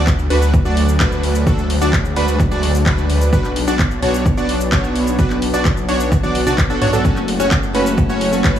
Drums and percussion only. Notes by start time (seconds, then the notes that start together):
0.07 kick, clap, shaker
0.19 shaker
0.30 open hi-hat
0.42 shaker
0.54 kick, shaker
0.65 shaker
0.77 open hi-hat
0.89 shaker
1.00 kick, clap, shaker
1.12 shaker
1.23 open hi-hat
1.35 shaker
1.47 kick, shaker
1.58 shaker
1.70 open hi-hat
1.82 shaker
1.93 kick, clap, shaker
2.05 shaker
2.16 open hi-hat
2.28 shaker
2.40 kick, clap, shaker
2.51 shaker
2.63 open hi-hat
2.75 shaker
2.86 kick, clap, shaker
2.98 shaker
3.10 open hi-hat
3.21 shaker
3.33 kick, shaker
3.44 clap, shaker
3.56 open hi-hat
3.68 shaker
3.79 kick, clap, shaker
3.91 shaker
4.02 open hi-hat
4.14 shaker
4.26 kick, shaker
4.37 shaker
4.49 open hi-hat
4.61 shaker
4.72 kick, clap, shaker
4.84 shaker
4.96 open hi-hat
5.07 shaker
5.19 kick, shaker
5.30 clap, shaker
5.42 open hi-hat
5.54 shaker
5.65 kick, clap, shaker
5.77 shaker
5.89 open hi-hat
6.00 shaker
6.12 kick, clap, high tom, shaker
6.24 high tom, shaker
6.35 open hi-hat
6.47 mid tom, shaker
6.58 kick, clap, mid tom, shaker
6.70 shaker
6.82 mid tom, open hi-hat
6.93 mid tom, shaker
7.05 kick, shaker
7.16 clap, shaker
7.28 open hi-hat
7.40 shaker
7.51 kick, clap, shaker
7.63 shaker
7.75 open hi-hat
7.86 shaker
7.98 kick, shaker
8.10 shaker
8.21 open hi-hat
8.33 shaker
8.44 kick, clap, shaker
8.56 shaker